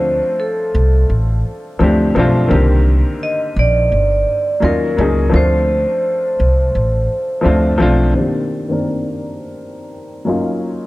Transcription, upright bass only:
0.00 0.19 D2 medium
0.75 1.06 C2 medium
1.10 1.41 A1 medium
1.80 2.12 D2 medium
2.16 2.47 B1 medium
2.51 3.01 C2 medium
3.56 3.88 A#1 medium
3.92 4.23 G1 medium
4.62 4.94 D#2 medium
4.98 5.30 C#2 medium
5.34 5.84 D2 medium
6.40 6.71 C2 medium
6.75 7.06 A1 medium
7.45 7.77 D2 medium
7.80 8.12 B1 medium

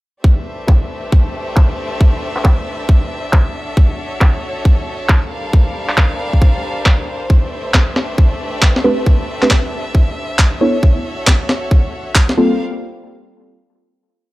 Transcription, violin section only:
0.24 3.52 A3 medium
0.24 5.27 D4 medium
0.24 3.52 G4 medium
0.24 3.52 B4 medium
0.24 3.52 C5 medium
0.24 5.27 E5 medium
3.55 5.30 F#4 medium
3.55 7.26 A4 medium
3.55 5.30 C#5 medium
5.31 7.28 G3 medium
5.31 7.28 D4 medium
5.31 7.28 A#4 medium
5.31 10.57 C5 medium
5.31 7.28 F5 medium
7.30 10.58 A3 medium
7.30 12.55 D4 medium
7.30 10.58 G4 medium
7.30 10.58 B4 medium
7.30 12.33 E5 medium
10.61 12.36 F#4 medium
10.61 12.57 A4 medium
10.61 12.36 C#5 medium
12.37 12.59 G3 medium
12.37 12.59 A#4 medium
12.37 12.59 C5 medium
12.37 12.59 F5 medium

